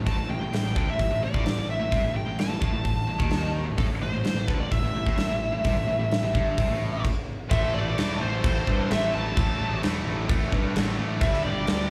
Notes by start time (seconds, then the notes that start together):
0.06 A1 A2 A5, kick, open hi-hat
0.18 A1 A2
0.29 A1 A2 G5
0.41 A1 A2
0.53 A1 A2, snare, open hi-hat
0.63 A1 A2
0.75 D2 D3 G5, kick
0.87 A1 A2 E5
0.99 A1 A2, kick, open hi-hat
1.11 A1 A2
1.22 A1 A2 D5
1.34 A1 A2, kick
1.46 A1 A2, snare, open hi-hat
1.58 A1 A2
1.70 E5
1.80 A1 A2
1.92 C2 C3, kick, open hi-hat
2.03 A1 A2
2.14 A1 A2 G5
2.26 A1 A2
2.39 A5, snare, open hi-hat
2.49 A1 A2
2.61 A1 A2, kick
2.73 A1 A2
2.84 A1 A2, kick, open hi-hat
3.08 A1 A2
3.18 D#2 D#3, kick
3.31 snare, open hi-hat
3.66 A1 A2
3.77 A1 A2 A4, kick, open hi-hat
3.88 A1 A2
4.01 A1 A2 C5
4.13 A1 A2
4.25 A1 A2, snare, open hi-hat
4.35 A1 A2
4.45 D2 D3 B4, kick
4.59 A1 A2 D5
4.71 A1 A2 E5, kick, open hi-hat
4.82 A1 A2
4.94 A1 A2
5.06 A1 A2, kick
5.17 A1 A2, snare, open hi-hat
5.30 A1 A2
5.52 A1 A2
5.64 C2 C3, kick, open hi-hat
5.76 A1 A2
5.88 A1 A2
5.99 A1 A2
6.12 snare, open hi-hat
6.23 A1 A2
6.34 G1 G2, kick
6.58 C2 C3, kick, open hi-hat
6.69 A1 A2
7.05 kick, crash
7.50 A1 A2 E3 A3 E4 C5 E5, kick, crash
7.74 A1 A2 E3 A3 A4 D5
7.97 E1 A2 E3 A3, snare, crash
8.20 A1 A2 E3 A3 A4 C5
8.43 A1 A2 E3 A3, kick, crash
8.66 G2 A2 E3 A3, kick
8.90 A1 A2 E3 A3 C5 E5, snare, crash
9.14 A1 A2 E3 A3 E5 A5
9.36 A1 A2 E3 A3 D4, kick, crash
9.60 A1 A2 E3 A3
9.83 E1 A2 E3 A3, snare, crash
10.06 A1 A2 E3 A3
10.28 A1 A2 E3 A3, kick, crash
10.51 G2 A2 E3 A3, kick
10.74 A1 A2 E3 A3, snare, crash
10.97 A1 A2 E3 A3
11.21 G1 G2 D3 G3 A4 B4 E5, kick, crash
11.34 snare
11.44 G1 G2 D3 G3 G4 D5
11.67 D2 G2 D3 G3, snare, crash